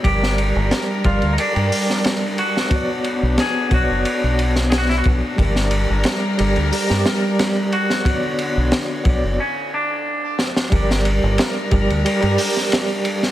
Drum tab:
RD |x-x-x-xxxx--x-x-|x-x-x-x-x-x-x-x-|x-x-x-xx--x-x-x-|x-x-x-x---------|
HH |----------o-----|----------------|--------o-------|----------------|
SD |-o--o------oo--o|----o------ooo--|-o--o----oo-o--o|----o---------oo|
BD |o-----o---------|o-----o-------o-|o---------------|o-----o---------|

RD |x-x-x-xxxx--x-x-|
HH |----------o-----|
SD |-o--o------oo--o|
BD |o-----o---------|